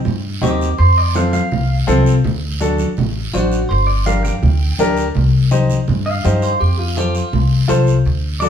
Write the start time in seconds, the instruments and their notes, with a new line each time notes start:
0.05 upright bass G2, low conga, long guiro
0.42 upright bass D#2, upright piano C4 D#4 G4, clean electric guitar G4, high conga, low conga, short guiro
0.61 short guiro
0.78 upright bass F2, clean electric guitar C5, long guiro
0.98 clean electric guitar D5
1.15 upright piano C4 F4 A4, clean electric guitar F5, high conga, short guiro
1.33 clean electric guitar F5, high conga, short guiro
1.52 upright bass C2, low conga, long guiro
1.87 upright bass C2, upright piano C4 F4 A4, high conga, short guiro
2.06 short guiro
2.24 upright bass D2, low conga, long guiro
2.61 upright piano D4 F#4 A4, high conga, short guiro
2.78 high conga, short guiro
2.97 upright bass A1, low conga, long guiro
3.34 upright bass A1, upright piano D4 F#4 C5, clean electric guitar F#4, high conga, short guiro
3.52 short guiro
3.69 upright bass G1, clean electric guitar C5, long guiro
3.87 clean electric guitar D5
4.06 upright piano D4 G4 A#4, clean electric guitar F5, high conga, short guiro
4.24 clean electric guitar G5, high conga, short guiro
4.43 upright bass D2, low conga, long guiro
4.79 upright bass D2, upright piano D4 G4 A#4, high conga, short guiro
4.97 short guiro
5.15 upright bass C2, low conga, long guiro
5.51 upright piano D#4 G4 C5, high conga, short guiro
5.70 high conga, short guiro
5.88 upright bass G2, low conga, long guiro
6.06 clean electric guitar F5
6.24 upright bass G2, upright piano D#4 G4 C5, high conga, short guiro
6.42 clean electric guitar C5, short guiro
6.60 upright bass F2, clean electric guitar G4, long guiro
6.79 clean electric guitar F4
6.97 upright piano F4 A4 C5, clean electric guitar G4, high conga, short guiro
7.15 clean electric guitar F4, short guiro
7.33 upright bass C2, low conga, long guiro
7.68 upright bass C2, upright piano F4 A4 C5, high conga, short guiro
7.87 short guiro
8.06 upright bass D2, long guiro
8.40 upright piano F#4 A4 D5, clean electric guitar D5, high conga, short guiro